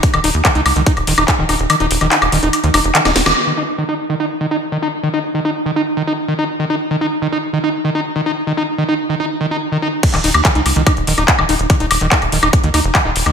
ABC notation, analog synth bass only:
X:1
M:4/4
L:1/16
Q:1/4=144
K:Dbmix
V:1 name="Analog synth bass" clef=bass
z E,,, E,,, E,, z D,, D,, D,, z E,,, E,,, E,,, z E,,, E,,, E,,, | z E,,, E,,, E,,, z E,,, E,,, E,,, z E,, F,,, F,,, z E,,, E,,, E,,, | z16 | z16 |
z16 | z16 | z E,,, E,,, E,, z D,, D,, D,, z E,,, E,,, E,,, z E,,, E,,, E,,, | z E,,, E,,, E,,, z E,,, E,,, E,,, z E,, E,, F,,, z E,,, E,,, E,, |]